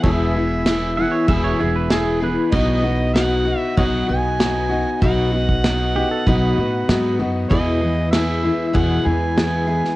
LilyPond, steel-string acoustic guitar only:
\new Staff \with { instrumentName = "Steel-string acoustic guitar" } { \time 4/4 \key e \major \tempo 4 = 96 <e, b, e b e' gis'>8 <e b e' gis'>8 <e b e' gis'>8 <e b e' gis'>8 <e, b, e b e' gis'>8 <e b e' gis'>8 <e b e' gis'>8 <e b e' gis'>8 | <b, fis b dis' fis'>8 <b dis' fis'>8 <fis b dis' fis'>8 <b dis' fis'>8 <b, fis b dis' fis'>8 <b dis' fis'>8 <fis b dis' fis'>8 <b dis' fis'>8 | <b, fis b dis' fis'>8 <b dis' fis'>8 <fis b dis' fis'>8 <b dis' fis'>8 <b, fis b dis' fis'>8 <b dis' fis'>8 <fis b dis' fis'>8 <b dis' fis'>8 | <e, b, e b e' gis'>8 <e b e' gis'>8 <e b e' gis'>8 <e b e' gis'>8 <e, b, e b e' gis'>8 <e b e' gis'>8 <e b e' gis'>8 <e b e' gis'>8 | }